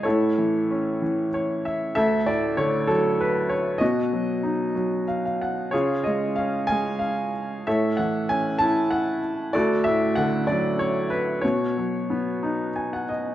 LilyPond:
<<
  \new Staff \with { instrumentName = "Upright piano" } { \time 6/8 \key ces \lydian \tempo 4. = 63 << { cis''2 cis''8 e''8 | fes''8 d''8 des''8 a'8 ces''8 des''8 | ees''2 f''16 f''16 ges''8 | des''8 ees''8 f''8 aes''8 f''8 r8 |
e''8 ges''8 aes''8 a''8 ges''8 r8 | d''8 fes''8 fis''8 d''8 des''8 ces''8 | des''2 aes''16 ges''16 ees''8 | } \\ { <e' a'>2 r4 | a'4. r4. | ges'2 r4 | <f' aes'>4. r4. |
<a' cis''>4. r4. | <fis' a'>4. r4. | ges'2 r4 | } >> }
  \new Staff \with { instrumentName = "Upright piano" } { \clef bass \time 6/8 \key ces \lydian a,8 e8 cis'8 e4. | d,8 a,8 d8 fis4. | ces8 ges8 ees'8 ges4. | des8 aes8 des'8 aes4. |
a,8 e8 cis'8 e'4. | d,8 a,8 d8 fis4. | ces8 ges8 ces'8 ees'4. | }
>>